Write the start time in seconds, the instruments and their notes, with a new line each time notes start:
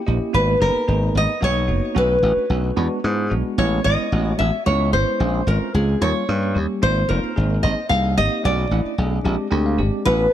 0.06 slap bass A#1, tine electric piano A#3 C#4 E4 G4 D#5
0.33 slap bass G#1, tine electric piano A#3 B3 D#4 F#4, nylon-string guitar B4
0.60 slap bass F#1, tine electric piano A#3 B3 D#4 G#4, nylon-string guitar A#4
0.75 muted slap bass stroke
0.88 slap bass G#1, tine electric piano A#3 B3 D#4 G#4
1.15 slap bass G#1, nylon-string guitar D#5
1.41 slap bass B1, tine electric piano A#3 B3 D#4 F#4, nylon-string guitar C#5
1.68 slap bass F#1, tine electric piano A#3 B3 D#4 F#4
1.95 slap bass B1, tine electric piano A3 C#4 D4 F#4, nylon-string guitar B4
2.23 slap bass A1, tine electric piano A3 C#4 D4 F#4
2.50 slap bass B1, tine electric piano A3 C#4 D4 F#4
2.76 slap bass E2, tine electric piano G#3 B3 D4 F#4
3.04 slap bass G#2, tine electric piano G#3 B3 D4 E4
3.30 slap bass B1, tine electric piano G#3 B3 D4 F#4
3.58 slap bass A1, tine electric piano G#3 B3 C#4 E4, nylon-string guitar C#5
3.84 slap bass G#1, tine electric piano G#3 B3 C#4 E4, nylon-string guitar D#5
4.12 slap bass A1, tine electric piano G#3 B3 C#4 F#4
4.39 slap bass A1, nylon-string guitar E5
4.66 slap bass C#2, tine electric piano G#3 B3 C#4 E4, nylon-string guitar C#5
4.93 slap bass G#1, tine electric piano G#3 B3 C#4 E4, nylon-string guitar C5
5.20 slap bass A#1, tine electric piano G#3 C4 C#4 F4
5.47 slap bass G#1, tine electric piano G#3 C4 C#4 F4, nylon-string guitar A#4
5.74 slap bass C#2, tine electric piano G#3 C4 C#4 F4, nylon-string guitar G#4
6.01 slap bass D#2, tine electric piano G3 A#3 C#4 F4, nylon-string guitar C#5
6.29 slap bass G2, tine electric piano G3 A#3 C#4 G4
6.55 slap bass D#2, tine electric piano G3 A#3 C#4 G4
6.82 slap bass G#1, tine electric piano A#3 C4 D#4 F4, nylon-string guitar C5
7.09 slap bass F1, tine electric piano A#3 C4 D#4 F4, nylon-string guitar A#4
7.23 muted slap bass stroke
7.36 slap bass G#1, tine electric piano A#3 C4 D#4 G#4
7.63 slap bass G#1, nylon-string guitar D#5
7.89 slap bass C2, tine electric piano A#3 C4 D#4 G#4, nylon-string guitar F5
8.17 slap bass G#1, tine electric piano A#3 C4 D#4 G4, nylon-string guitar D#5
8.44 slap bass B1, tine electric piano A3 C#4 D4 F#4, nylon-string guitar D5
8.71 slap bass A1, tine electric piano A3 C#4 D4 E4
8.85 muted slap bass stroke
8.98 slap bass B1, tine electric piano A3 C#4 D4 G#4
9.25 slap bass A#1, tine electric piano G#3 C4 D4 G4
9.50 slap bass D2, tine electric piano G#3 C4 D4 G4 G5
9.66 tine electric piano F5
9.78 slap bass G#1, tine electric piano G#3 C4 D4 G4 D5
10.05 slap bass A1, tine electric piano B3 C#4 E4 F#4, nylon-string guitar B4